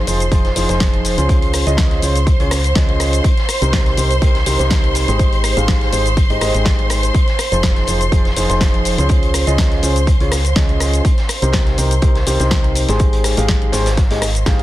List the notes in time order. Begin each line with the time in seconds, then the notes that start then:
Already playing: C5 C6, impact
0.07 F1 F3 D#4 F4 G#4 C5, closed hi-hat, open hi-hat, cabasa
0.20 closed hi-hat, cabasa
0.32 F1 F3 D#4 F4 G#4 C5, kick, closed hi-hat, cabasa
0.45 snare, closed hi-hat
0.56 F1 F3 D#4 F4 G#4 C5, snare, closed hi-hat, open hi-hat, cabasa
0.69 F1 F3 D#4 F4 G#4 C5, snare, closed hi-hat, cabasa
0.80 kick, snare, closed hi-hat, cabasa
0.94 closed hi-hat
1.05 snare, closed hi-hat, open hi-hat, cabasa
1.18 C#2 C#3 C#4 F4 G#4 C5, closed hi-hat, cabasa
1.29 kick, closed hi-hat, cabasa
1.42 closed hi-hat
1.53 cross-stick, closed hi-hat, open hi-hat, cabasa
1.67 C#2 C#3 C#4 F4 G#4 D#5, closed hi-hat, cabasa
1.77 kick, snare, closed hi-hat, cabasa
1.91 snare, closed hi-hat
2.02 C#2 C#3 C#4 F4 G#4 C5, closed hi-hat, open hi-hat, cabasa
2.16 closed hi-hat, cabasa
2.27 kick, closed hi-hat, cabasa
2.40 C#2 C#3 C#4 F4 G#4 C#5, closed hi-hat
2.51 cross-stick, snare, closed hi-hat, open hi-hat, cabasa
2.64 closed hi-hat, cabasa
2.75 C#2 C#3 C#4 F4 G#4 D#5, kick, snare, closed hi-hat, cabasa
2.89 closed hi-hat
3.00 cross-stick, snare, closed hi-hat, open hi-hat, cabasa
3.13 closed hi-hat, cabasa
3.24 kick, closed hi-hat, cabasa
3.37 snare, closed hi-hat
3.48 cross-stick, closed hi-hat, open hi-hat, cabasa
3.62 C2 C3 D#4 G4 A#4 C5, closed hi-hat, cabasa
3.73 kick, snare, closed hi-hat, cabasa
3.86 snare, closed hi-hat
3.97 C2 C3 D#4 G4 A#4 C5, closed hi-hat, open hi-hat, cabasa
4.11 closed hi-hat, cabasa
4.22 C2 C3 D#4 G4 A#4 C5, kick, closed hi-hat, cabasa
4.35 snare, closed hi-hat
4.46 C2 C3 D#4 G4 A#4 C5, snare, closed hi-hat, open hi-hat, cabasa
4.59 C2 C3 D#4 G4 A#4 C5, snare, closed hi-hat, cabasa
4.70 kick, snare, closed hi-hat, cabasa
4.84 closed hi-hat
4.94 snare, closed hi-hat, open hi-hat, cabasa
5.08 G#1 G#3 D#4 G4 G#4 C5, closed hi-hat, cabasa
5.19 kick, closed hi-hat, cabasa
5.33 closed hi-hat
5.44 cross-stick, closed hi-hat, open hi-hat, cabasa
5.57 G#1 G#3 D#4 G4 G#4 F5, closed hi-hat, cabasa
5.68 kick, snare, closed hi-hat, cabasa
5.81 snare, closed hi-hat
5.93 G#1 G#3 D#4 G4 G#4 C5, closed hi-hat, open hi-hat, cabasa
6.06 closed hi-hat, cabasa
6.17 kick, closed hi-hat, cabasa
6.30 G#1 G#3 D#4 G4 G#4 D#5, closed hi-hat
6.41 G#1 G#3 D#4 G4 G#4 D#5, cross-stick, snare, closed hi-hat, open hi-hat, cabasa
6.54 G#1 G#3 D#4 G4 G#4 D#5, closed hi-hat, cabasa
6.65 kick, snare, closed hi-hat, cabasa
6.79 closed hi-hat
6.89 cross-stick, snare, closed hi-hat, open hi-hat, cabasa
7.03 closed hi-hat, cabasa
7.15 kick, closed hi-hat, cabasa
7.27 snare, closed hi-hat
7.39 cross-stick, closed hi-hat, open hi-hat, cabasa
7.52 F1 F3 D#4 F4 G#4 C5, closed hi-hat, cabasa
7.63 kick, snare, closed hi-hat, cabasa
7.76 snare, closed hi-hat
7.87 F1 F3 D#4 F4 G#4 C5, closed hi-hat, open hi-hat, cabasa
8.01 closed hi-hat, cabasa
8.12 F1 F3 D#4 F4 G#4 C5, kick, closed hi-hat, cabasa
8.25 snare, closed hi-hat
8.36 F1 F3 D#4 F4 G#4 C5, snare, closed hi-hat, open hi-hat, cabasa
8.49 F1 F3 D#4 F4 G#4 C5, snare, closed hi-hat, cabasa
8.61 kick, snare, closed hi-hat, cabasa
8.74 closed hi-hat
8.85 snare, closed hi-hat, open hi-hat, cabasa
8.98 C#2 C#3 C#4 F4 G#4 C5, closed hi-hat, cabasa
9.09 kick, closed hi-hat, cabasa
9.22 closed hi-hat
9.34 cross-stick, closed hi-hat, open hi-hat, cabasa
9.47 C#2 C#3 C#4 F4 G#4 D#5, closed hi-hat, cabasa
9.58 kick, snare, closed hi-hat, cabasa
9.71 snare, closed hi-hat
9.83 C#2 C#3 C#4 F4 G#4 C5, closed hi-hat, open hi-hat, cabasa
9.96 closed hi-hat, cabasa
10.07 kick, closed hi-hat, cabasa
10.20 C#2 C#3 C#4 F4 G#4 C#5, closed hi-hat
10.32 cross-stick, snare, closed hi-hat, open hi-hat, cabasa
10.45 closed hi-hat, cabasa
10.56 C#2 C#3 C#4 F4 G#4 D#5, kick, snare, closed hi-hat, cabasa
10.69 closed hi-hat
10.80 cross-stick, snare, closed hi-hat, open hi-hat, cabasa
10.93 closed hi-hat, cabasa
11.05 kick, closed hi-hat, cabasa
11.18 snare, closed hi-hat
11.29 cross-stick, closed hi-hat, open hi-hat, cabasa
11.42 C2 C3 D#4 G4 A#4 C5, closed hi-hat, cabasa
11.53 kick, snare, closed hi-hat, cabasa
11.66 snare, closed hi-hat
11.78 C2 C3 D#4 G4 A#4 C5, closed hi-hat, open hi-hat, cabasa
11.91 closed hi-hat, cabasa
12.02 C2 C3 D#4 G4 A#4 C5, kick, closed hi-hat, cabasa
12.15 snare, closed hi-hat
12.26 C2 C3 D#4 G4 A#4 C5, snare, closed hi-hat, open hi-hat, cabasa
12.40 C2 C3 D#4 G4 A#4 C5, snare, closed hi-hat, cabasa
12.51 kick, snare, closed hi-hat, cabasa
12.64 closed hi-hat
12.75 closed hi-hat, open hi-hat, cabasa
12.88 G#1 G#3 D#4 G4 G#4 C5, snare, closed hi-hat, cabasa
12.99 kick, closed hi-hat, cabasa
13.13 closed hi-hat
13.24 cross-stick, snare, open hi-hat, cabasa
13.37 G#1 G#3 D#4 G4 G#4 F5, closed hi-hat, cabasa
13.48 kick, snare, closed hi-hat, cabasa
13.62 closed hi-hat
13.72 G#1 G#3 D#4 G4 G#4 C5, snare, closed hi-hat, open hi-hat, cabasa
13.86 snare, closed hi-hat, cabasa
13.97 kick, snare, closed hi-hat, cabasa
14.11 G#1 G#3 D#4 G4 G#4 D#5, snare, closed hi-hat
14.22 cross-stick, snare, closed hi-hat, open hi-hat, cabasa
14.35 closed hi-hat, cabasa
14.46 G#1 G#3 D#4 G4 G#4 F5, kick, snare, closed hi-hat, cabasa
14.59 closed hi-hat